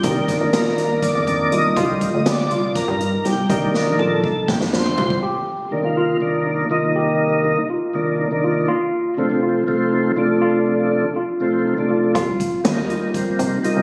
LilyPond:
<<
  \new Staff \with { instrumentName = "Tine electric piano" } { \time 7/8 \key c \dorian \tempo 4 = 121 ees'4 f'8 ees'4 c'8 f'8 | f'4 g'8 f'4 ees'8 g'8 | ees'4 f'8 ees'4 d'8 f'8 | g'4 ees'8 f'4 ees'8 f'8 |
g'4 ees'8 f'4 ees'8 f'8 | f'4 d'8 f'4 ees'8 f'8 | f'4 d'8 f'4 ees'8 f'8 | f'4 ees'8 f'4 ees'8 f'8 | }
  \new Staff \with { instrumentName = "Tonewheel organ" } { \time 7/8 \key c \dorian << { g'8 r8 bes'4 d''4 ees''8~ | ees''4 d''4 bes'4 g'8~ | g'8 r8 a'4 g'8 c''4 | r4 <c, ees bes d'>16 <c, ees bes f'>8. <c, ees bes d'>4 <c, ees bes ees'>8~ |
<c, ees bes ees'>4~ <c, ees bes ees'>16 r8. <c, ees bes d'>8. <c, ees bes d'>8. | r4 <c f a c'>16 <c f a c'>8. <c f a c'>4 <c f a d'>8~ | <c f a d'>4~ <c f a d'>16 r8. <c f a c'>8. <c f a d'>8. | r4 <g bes ees'>16 <g bes ees'>8. <g bes c'>4 <g bes ees'>8 | } \\ { <ees bes d'>2.~ <ees bes d'>8 | <d f g>8 r2. | <ees bes d'>4. r2 | r2. r8 |
r2. r8 | r2. r8 | r2. r8 | r2. r8 | } >> }
  \new Staff \with { instrumentName = "Analog synth bass" } { \clef bass \time 7/8 \key c \dorian c,8 r16 bes,,8. c,8. f,8. c,8 | c,8 r16 d,8. c,8. g,8. c,8 | c,8 r16 bes,,8. c,8. f,8. c,8 | r2. r8 |
r2. r8 | r2. r8 | r2. r8 | c,8 r8 ees,16 ees,8 r8. c8 r16 c,16 | }
  \new DrumStaff \with { instrumentName = "Drums" } \drummode { \time 7/8 <hh bd>8 <hh bd sn>8 <hh sn>8 <hh sn>8 <hh bd sn>8 <hh bd>8 hh8 | <hh bd>8 <hh bd>8 <hh sn>8 hh8 <hh bd sn>8 hh8 <hh sn>8 | <hh bd>8 sn8 tommh8 bd8 <bd sn>16 sn16 sn16 tomfh16 tomfh16 bd16 | r4 r4 r4. |
r4 r4 r4. | r4 r4 r4. | r4 r4 r4. | <hh bd>8 <hh bd>8 <hh sn>8 hh8 <hh bd>8 <hh bd>8 hh8 | }
>>